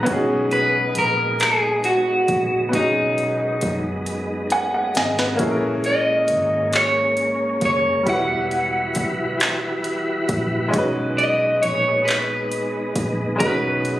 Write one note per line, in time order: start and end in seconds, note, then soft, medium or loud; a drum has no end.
0.00 8.03 G#3 medium
0.00 2.67 B3 medium
0.00 5.36 D#4 medium
0.05 0.92 B1 loud
0.05 5.35 B3 medium
0.05 2.69 C#4 medium
0.05 2.70 D#4 medium
0.05 kick loud
0.05 closed hi-hat medium
0.11 2.71 F#4 medium
0.11 2.73 G#4 medium
0.51 0.93 B4 loud
0.51 closed hi-hat medium
0.95 2.26 A#1 loud
0.95 1.41 A#4 loud
0.95 closed hi-hat medium
1.40 1.87 G#4 medium
1.40 clap loud
1.40 closed hi-hat medium
1.84 2.75 F#4 medium
1.84 closed hi-hat medium
2.28 2.70 A#1 medium
2.28 kick medium
2.28 closed hi-hat medium
2.69 5.34 B3 medium
2.69 5.35 C#4 medium
2.73 3.59 B1 loud
2.73 5.36 D#4 medium
2.73 3.70 D#4 medium
2.73 5.38 F#4 medium
2.73 kick loud
2.73 closed hi-hat medium
2.79 5.39 G#4 medium
3.18 closed hi-hat medium
3.61 4.92 F#2 medium
3.61 kick medium
3.61 closed hi-hat medium
4.06 closed hi-hat medium
4.50 4.73 F#5 medium
4.50 4.73 G#5 medium
4.50 closed hi-hat medium
4.74 4.95 F#5 medium
4.95 5.37 G#1 medium
4.95 5.17 D#5 medium
4.95 5.38 G#5 medium
4.95 snare medium
4.95 closed hi-hat medium
5.19 5.61 B4 medium
5.19 snare medium
5.35 8.00 A#3 medium
5.35 8.01 C#4 medium
5.39 6.31 A#1 loud
5.39 8.04 A#3 medium
5.39 8.04 C#4 medium
5.39 8.03 E4 medium
5.39 8.04 G#4 medium
5.39 kick loud
5.39 closed hi-hat medium
5.45 5.49 A4 medium
5.51 8.08 A#4 medium
5.84 6.75 D#5 medium
5.84 closed hi-hat medium
6.28 7.59 G#1 medium
6.28 closed hi-hat medium
6.73 7.60 C#5 medium
6.73 clap medium
6.73 closed hi-hat medium
7.17 closed hi-hat medium
7.61 8.03 F#1 medium
7.61 kick medium
7.61 closed hi-hat medium
7.65 8.05 C#5 medium
8.03 10.71 E3 medium
8.03 10.68 G3 medium
8.03 10.70 G3 medium
8.03 10.69 B3 medium
8.03 10.71 E4 medium
8.03 10.71 F#4 medium
8.03 10.71 B4 medium
8.03 kick loud
8.03 closed hi-hat medium
8.07 8.97 E1 loud
8.07 10.70 E4 medium
8.07 10.72 F#4 medium
8.07 10.26 F#5 loud
8.13 10.73 B4 medium
8.51 closed hi-hat soft
8.95 10.26 B1 loud
8.95 kick medium
8.95 closed hi-hat medium
9.40 clap loud
9.40 closed hi-hat medium
9.84 closed hi-hat medium
10.29 10.70 A#1 medium
10.29 kick medium
10.29 closed hi-hat medium
10.68 13.34 G#3 medium
10.68 14.00 B3 medium
10.68 13.35 C#4 medium
10.72 11.59 B1 loud
10.72 14.00 G#3 medium
10.72 14.00 D#4 medium
10.72 13.36 D#4 medium
10.72 13.37 F#4 medium
10.72 kick loud
10.72 closed hi-hat medium
10.78 13.39 B4 medium
11.18 11.62 D#5 loud
11.18 closed hi-hat medium
11.62 12.92 A#1 loud
11.62 12.05 C#5 loud
11.62 closed hi-hat medium
12.05 13.38 B4 loud
12.05 closed hi-hat medium
12.10 clap loud
12.52 closed hi-hat medium
12.96 13.37 A#1 medium
12.96 kick loud
12.96 closed hi-hat medium
13.36 14.00 G#3 medium
13.36 14.00 C#4 medium
13.36 14.00 B4 medium
13.40 14.00 B1 loud
13.40 14.00 D#4 medium
13.40 14.00 F#4 medium
13.40 kick loud
13.40 closed hi-hat medium
13.46 14.00 B4 medium
13.85 closed hi-hat medium